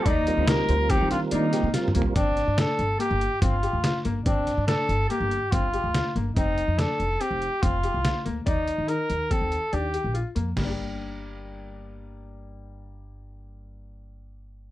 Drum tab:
CC |------------------------------|------------------------------|------------------------------|------------------------------|
HH |x--x--x--x--x--x--x--x--x--x--|x--x--x--x--x--x--x--x--x--x--|x--x--x--x--x--x--x--x--x--x--|x--x--x--x--x--x--x--x--x--x--|
SD |------o--------o-----o--o-----|---o--o-----------------o-----|---o--o-----------------o-----|------o-----------------o-----|
T2 |--------------------------o---|------------------------------|------------------------------|------------------------------|
FT |----------------------------o-|------------------------------|------------------------------|------------------------------|
BD |o-----------o-----------------|o-----------------o-----------|o-----------------o-----------|o-----------------o-----------|

CC |------------------------------|x-----------------------------|------------------------------|
HH |x--x--x--x--x--x--x--x--x--x--|------------------------------|------------------------------|
SD |------------------------------|o-----------------------------|------------------------------|
T2 |------------------------------|------------------------------|------------------------------|
FT |------------------------------|o-----------------------------|------------------------------|
BD |o-----------o-----------------|------------------------------|------------------------------|